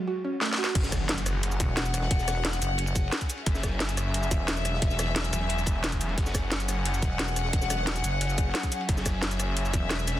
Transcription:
0.07 synth pluck F#4
0.24 synth pluck C#4
0.41 synth pluck A3, snare
0.53 snare
0.58 synth pluck F#4
0.64 snare
0.75 detuned saw bass F#1, string section F#3 C#4 G#4 F#5, kick, closed hi-hat, crash, ride, impact
0.84 snare, cabasa
0.92 kick, cross-stick, snare, closed hi-hat, ride, cabasa
1.08 snare, closed hi-hat, ride
1.18 closed hi-hat, cabasa
1.26 cross-stick, closed hi-hat, ride, cabasa
1.43 closed hi-hat, ride
1.51 ride, cabasa
1.60 wobble bass E1, kick, closed hi-hat, ride, cabasa
1.77 snare, closed hi-hat, ride
1.85 cabasa
1.93 cross-stick, closed hi-hat, ride, cabasa
2.01 snare
2.11 wobble bass E1, kick, closed hi-hat, ride
2.19 snare, cabasa
2.28 cross-stick, snare, closed hi-hat, ride, cabasa
2.36 ride
2.45 snare, closed hi-hat, ride
2.53 closed hi-hat, cabasa
2.61 wobble bass F#1, closed hi-hat, ride, cabasa
2.78 closed hi-hat, ride
2.87 cabasa
2.95 kick, closed hi-hat, ride, cabasa
3.12 snare, closed hi-hat, ride
3.21 kick, closed hi-hat, cabasa
3.29 closed hi-hat, ride, cabasa
3.37 ride
3.46 detuned saw bass F#1, string section E5, kick, closed hi-hat, ride
3.55 snare, cabasa
3.63 kick, cross-stick, snare, closed hi-hat, ride, cabasa
3.80 snare, closed hi-hat, ride
3.89 closed hi-hat, cabasa
3.97 cross-stick, closed hi-hat, ride, cabasa
4.14 closed hi-hat, ride
4.23 ride, cabasa
4.31 wobble bass E1, kick, closed hi-hat, ride, cabasa
4.48 snare, closed hi-hat, ride
4.57 cabasa
4.65 cross-stick, closed hi-hat, ride, cabasa
4.74 snare
4.82 wobble bass E1, kick, closed hi-hat, ride
4.91 snare, cabasa
4.99 cross-stick, snare, closed hi-hat, ride, cabasa
5.08 ride
5.16 snare, closed hi-hat, ride
5.24 closed hi-hat, cabasa
5.33 detuned saw bass E1, closed hi-hat, ride, cabasa
5.49 closed hi-hat, ride
5.58 cabasa
5.66 kick, closed hi-hat, ride, cabasa
5.83 snare, closed hi-hat, ride
5.92 kick, closed hi-hat, cabasa
6.01 closed hi-hat, ride, cabasa
6.09 ride
6.18 detuned saw bass F#1, string section F#5, kick, closed hi-hat, ride
6.26 snare, cabasa
6.34 kick, cross-stick, snare, closed hi-hat, ride, cabasa
6.52 snare, closed hi-hat, ride
6.60 closed hi-hat, cabasa
6.69 cross-stick, closed hi-hat, ride, cabasa
6.85 closed hi-hat, ride
6.94 ride, cabasa
7.02 wobble bass E1, kick, closed hi-hat, ride, cabasa
7.19 snare, closed hi-hat, ride
7.28 cabasa
7.36 cross-stick, closed hi-hat, ride, cabasa
7.45 snare
7.53 wobble bass E1, kick, closed hi-hat, ride
7.62 snare, cabasa
7.70 cross-stick, snare, closed hi-hat, ride, cabasa
7.78 ride
7.87 snare, closed hi-hat, ride
7.96 closed hi-hat, cabasa
8.04 wobble bass F#1, closed hi-hat, ride, cabasa
8.21 closed hi-hat, ride
8.29 cabasa
8.38 kick, closed hi-hat, ride, cabasa
8.54 snare, closed hi-hat, ride
8.63 kick, closed hi-hat, cabasa
8.72 closed hi-hat, ride, cabasa
8.81 ride
8.89 detuned saw bass F#1, string section E5, kick, closed hi-hat, ride
8.97 snare, cabasa
9.06 kick, cross-stick, snare, closed hi-hat, ride, cabasa
9.22 snare, closed hi-hat, ride
9.31 closed hi-hat, cabasa
9.39 cross-stick, closed hi-hat, ride, cabasa
9.57 closed hi-hat, ride
9.65 ride, cabasa
9.73 wobble bass E1, kick, closed hi-hat, ride, cabasa
9.90 snare, closed hi-hat, ride
9.99 cabasa
10.07 cross-stick, closed hi-hat, ride, cabasa
10.16 snare

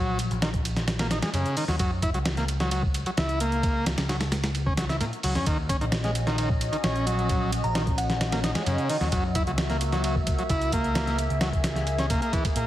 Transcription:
Already playing: picked electric bass A#1, transistor combo organ F#3
0.19 closed hi-hat, ride
0.31 picked electric bass A#1, closed hi-hat
0.42 transistor combo organ D#3, snare, closed hi-hat, ride
0.54 kick, closed hi-hat
0.65 closed hi-hat, ride
0.77 snare, closed hi-hat
0.88 snare, closed hi-hat, ride
0.99 transistor combo organ A#3, snare, ride
1.11 transistor combo organ D#4, snare, closed hi-hat, ride
1.22 transistor combo organ G#3, muted picked electric bass stroke, snare, closed hi-hat, ride
1.33 picked electric bass F#2, transistor combo organ C#3, closed hi-hat, ride
1.46 closed hi-hat
1.57 transistor combo organ D#3, closed hi-hat, open hi-hat
1.68 picked electric bass D#2, transistor combo organ F#3, snare, closed hi-hat
1.79 picked electric bass F#2, transistor combo organ F#3, kick, closed hi-hat, ride
2.02 transistor combo organ E4, kick, closed hi-hat, ride
2.14 picked electric bass C#2, transistor combo organ F#3, closed hi-hat
2.25 snare, closed hi-hat, ride
2.37 transistor combo organ A#3, snare, closed hi-hat
2.48 closed hi-hat, ride
2.60 transistor combo organ F#3, snare, closed hi-hat
2.71 transistor combo organ F#3, closed hi-hat, ride
2.83 kick
2.94 closed hi-hat, ride
3.06 transistor combo organ F#3, muted picked electric bass stroke, closed hi-hat, ride
3.17 picked electric bass C#2, transistor combo organ E4, snare, closed hi-hat, ride
3.29 closed hi-hat
3.40 transistor combo organ A#3, closed hi-hat, ride
3.52 closed hi-hat
3.63 kick, closed hi-hat, ride
3.86 snare, closed hi-hat, ride
3.98 picked electric bass C#2, snare, closed hi-hat, ride
4.09 transistor combo organ F#3, snare, closed hi-hat, ride
4.21 snare, closed hi-hat, ride
4.32 snare, closed hi-hat, ride
4.44 snare, closed hi-hat, ride
4.55 closed hi-hat, ride
4.66 transistor combo organ C#4, kick
4.77 transistor combo organ F#3, snare, closed hi-hat, ride
4.89 transistor combo organ E4, snare, closed hi-hat
5.01 picked electric bass A#2, transistor combo organ A#3, closed hi-hat, ride
5.13 closed hi-hat
5.23 picked electric bass C#2, transistor combo organ F#3, closed hi-hat, open hi-hat
5.35 picked electric bass F#2, transistor combo organ C#4, snare, closed hi-hat
5.46 picked electric bass D#2, transistor combo organ D#3, analog synth pad C#4 F#4 D#5, kick, closed hi-hat, ride
5.69 transistor combo organ C#4, kick, closed hi-hat, ride
5.81 picked electric bass A#1, transistor combo organ D#3, closed hi-hat
5.92 snare, closed hi-hat, ride
6.04 transistor combo organ G#3, snare, closed hi-hat
6.15 closed hi-hat, ride
6.27 transistor combo organ D#3, snare, closed hi-hat
6.38 transistor combo organ D#3, closed hi-hat, ride
6.50 kick
6.61 closed hi-hat, ride
6.72 transistor combo organ D#3, muted picked electric bass stroke, closed hi-hat, ride
6.84 picked electric bass A#1, transistor combo organ C#4, snare, closed hi-hat, ride
6.96 closed hi-hat
7.06 transistor combo organ F#3, closed hi-hat, ride
7.19 closed hi-hat
7.29 kick, closed hi-hat, ride
7.52 closed hi-hat, ride
7.64 picked electric bass A#1, synth bell A#5, closed hi-hat
7.75 transistor combo organ D#3, snare, closed hi-hat, ride
7.87 kick, closed hi-hat
7.98 synth bell F#5, closed hi-hat, ride
8.10 snare, closed hi-hat
8.21 snare, closed hi-hat, ride
8.32 transistor combo organ A#3, snare, ride
8.44 transistor combo organ D#4, snare, closed hi-hat, ride
8.55 transistor combo organ G#3, muted picked electric bass stroke, snare, closed hi-hat, ride
8.66 picked electric bass F#2, transistor combo organ C#3, closed hi-hat, ride
8.78 closed hi-hat
8.89 transistor combo organ D#3, closed hi-hat, open hi-hat
9.01 picked electric bass D#2, transistor combo organ F#3, snare, closed hi-hat
9.12 picked electric bass F#2, transistor combo organ F#3, analog synth pad A#3 E5, kick, closed hi-hat, ride
9.35 transistor combo organ E4, kick, closed hi-hat, ride
9.47 picked electric bass C#2, transistor combo organ F#3, closed hi-hat
9.58 snare, closed hi-hat, ride
9.70 transistor combo organ A#3, snare, closed hi-hat
9.81 closed hi-hat, ride
9.92 transistor combo organ F#3, snare, closed hi-hat
10.04 transistor combo organ F#3, closed hi-hat, ride
10.16 kick
10.27 kick, closed hi-hat, ride
10.39 transistor combo organ F#3, muted picked electric bass stroke, closed hi-hat
10.49 picked electric bass C#2, transistor combo organ E4, kick, closed hi-hat, ride
10.62 closed hi-hat
10.72 transistor combo organ A#3, kick, closed hi-hat, ride
10.84 closed hi-hat
10.95 analog synth pad G#4, snare, closed hi-hat, ride
11.07 snare, closed hi-hat
11.18 closed hi-hat, ride
11.30 picked electric bass C#2, closed hi-hat
11.41 transistor combo organ F#3, snare, closed hi-hat, ride
11.53 kick, closed hi-hat
11.64 snare, closed hi-hat, ride
11.76 snare, closed hi-hat
11.87 closed hi-hat, ride
11.99 transistor combo organ C#4, snare, closed hi-hat
12.10 transistor combo organ A#3, kick, closed hi-hat, ride
12.22 transistor combo organ A#3, closed hi-hat
12.33 transistor combo organ E3, kick, closed hi-hat, ride
12.45 kick, closed hi-hat, ride
12.56 picked electric bass A#2, transistor combo organ A#3, closed hi-hat

